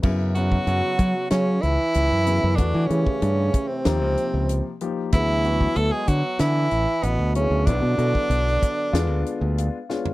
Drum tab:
CC |x---------------|----------------|----------------|----------------|
HH |--x-x-x-x-x-x-x-|x-x-x-x-x-x-x-x-|x-x-x-x-x-x-x-x-|x-x-x-x-x-x-x---|
SD |--------o-------|--------o-------|--------o-------|-----o--o-----o-|
FT |----------------|----------------|----------------|---------------o|
BD |o--o--o---------|o--o--o---------|o--o--o---------|o--o--o---------|